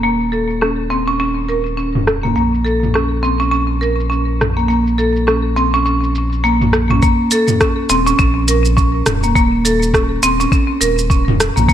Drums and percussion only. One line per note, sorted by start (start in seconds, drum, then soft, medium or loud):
0.04 shaker soft
0.21 shaker soft
0.33 shaker medium
0.50 shaker soft
0.62 cross-stick medium
0.62 shaker soft
0.91 shaker medium
1.08 shaker soft
1.20 shaker soft
1.49 shaker medium
1.66 shaker soft
1.78 shaker soft
1.95 mid tom medium
2.07 cross-stick medium
2.07 shaker medium
2.25 mid tom soft
2.25 shaker soft
2.37 shaker soft
2.54 shaker soft
2.66 shaker medium
2.83 mid tom soft
2.83 shaker soft
2.95 cross-stick medium
2.95 shaker soft
3.24 shaker medium
3.41 shaker soft
3.53 shaker soft
3.82 shaker medium
4.00 shaker soft
4.12 shaker soft
4.41 cross-stick medium
4.41 mid tom medium
4.41 shaker medium
4.58 shaker soft
4.70 shaker soft
4.87 shaker soft
4.99 shaker medium
5.16 shaker soft
5.28 cross-stick medium
5.28 shaker soft
5.57 shaker medium
5.74 shaker soft
5.86 shaker soft
6.03 shaker soft
6.15 shaker medium
6.32 shaker soft
6.45 shaker soft
6.61 mid tom medium
6.61 shaker soft
6.73 cross-stick medium
6.73 shaker medium
6.90 mid tom medium
6.90 shaker soft
7.02 kick loud
7.02 shaker soft
7.31 closed hi-hat loud
7.31 shaker medium
7.48 mid tom medium
7.48 shaker soft
7.61 kick loud
7.61 cross-stick medium
7.61 shaker soft
7.89 closed hi-hat medium
7.89 shaker medium
8.07 shaker soft
8.19 kick loud
8.19 shaker soft
8.48 closed hi-hat loud
8.48 shaker medium
8.65 shaker soft
8.77 kick medium
8.77 shaker soft
9.06 cross-stick medium
9.06 closed hi-hat medium
9.06 mid tom medium
9.06 shaker medium
9.23 shaker soft
9.36 kick loud
9.36 shaker soft
9.65 closed hi-hat medium
9.65 shaker medium
9.82 shaker soft
9.94 kick loud
9.94 cross-stick medium
9.94 shaker soft
10.23 closed hi-hat medium
10.23 shaker medium
10.40 shaker soft
10.52 kick loud
10.52 shaker soft
10.81 closed hi-hat medium
10.81 shaker medium
10.98 shaker soft
11.10 kick loud
11.10 shaker soft
11.28 mid tom medium
11.40 cross-stick medium
11.40 closed hi-hat medium
11.40 shaker medium
11.57 mid tom medium
11.57 shaker soft
11.68 kick loud
11.68 shaker soft